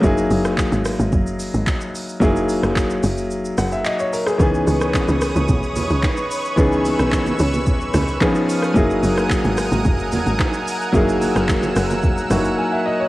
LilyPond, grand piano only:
\new Staff \with { instrumentName = "Grand piano" } { \time 4/4 \key fis \mixolydian \tempo 4 = 110 << { r1 | r2 r8 fis''16 e''16 dis''16 cis''16 ais'16 gis'16~ | gis'16 r2. r8. | r1 |
r1 | r2. gis''16 e''16 dis''16 cis''16 | } \\ { <fis ais dis' e' gis'>1 | <fis ais dis' e' gis'>1 | <e b cis' dis' gis'>1 | <e b cis' dis' gis'>2. <eis b cis' dis' gis'>4 |
<fis ais dis' e' gis'>1 | <fis ais dis' e' gis'>2~ <fis ais dis' e' gis'>8 <fis ais dis' e' fis'>4. | } >> }